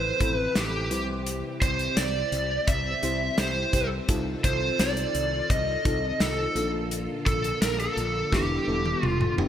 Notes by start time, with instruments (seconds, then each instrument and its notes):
Already playing: fretless electric bass A1, fm electric piano A2 C4 E4 A4 B4, string machine C3 F3 C4 E4, lead electric guitar C5
0.20 fretless electric bass A1, fm electric piano C4 E4 A4 B5, kick, closed hi-hat
0.36 lead electric guitar B4
0.55 fretless electric bass A1, lead electric guitar G4, snare, closed hi-hat
0.91 fretless electric bass C2, fm electric piano C3 C4 E4 G4 C5, string machine E3 G3 C4 G4, closed hi-hat
1.26 closed hi-hat
1.62 fretless electric bass C2, lead electric guitar C5, kick, closed hi-hat
1.79 closed hi-hat
1.97 fretless electric bass C2, lead electric guitar D5, snare, closed hi-hat
2.32 fretless electric bass C2, closed hi-hat
2.67 fretless electric bass C2, lead electric guitar E5, kick, closed hi-hat
3.03 fretless electric bass C2, fm electric piano C4 E4 G4 C5, closed hi-hat
3.38 fretless electric bass C2, lead electric guitar C5, snare, closed hi-hat
3.73 fretless electric bass C2, fm electric piano C4 E4 G4 C5, kick, closed hi-hat
4.08 fretless electric bass C2, fm electric piano C3 C4 D#4 F4 A4, string machine D#3 F4 A4, kick, closed hi-hat
4.44 fretless electric bass C2, lead electric guitar C5, kick, closed hi-hat
4.79 fretless electric bass C2, lead electric guitar D5, snare, closed hi-hat
4.97 closed hi-hat
5.15 fretless electric bass C2, closed hi-hat
5.50 fretless electric bass C2, lead electric guitar D#5, kick, closed hi-hat
5.85 fretless electric bass C2, fm electric piano C4 D#4 F4 A4, kick, closed hi-hat
6.20 fretless electric bass C2, lead electric guitar A4, snare, closed hi-hat
6.55 fretless electric bass A#1, fm electric piano A#2 A#3 D4 F4 A4, string machine D3 A#3 F4, closed hi-hat
6.91 closed hi-hat
7.26 fretless electric bass A#1, lead electric guitar A4, kick, closed hi-hat
7.44 closed hi-hat
7.62 fretless electric bass A#1, lead electric guitar A#4, snare, closed hi-hat
7.80 lead electric guitar A4, closed hi-hat
7.97 fretless electric bass A#1, closed hi-hat
8.32 fretless electric bass E1, fm electric piano E3 B3 D4 E4 G4, string machine G3 B3 E4, lead electric guitar G4, kick, snare
8.67 fretless electric bass E1, fm electric piano B3 D4 E4 A4
8.86 high tom
9.03 fretless electric bass E1, lead electric guitar F4, mid tom
9.21 mid tom
9.38 fretless electric bass E1, fm electric piano B3 D4 E4 G4, floor tom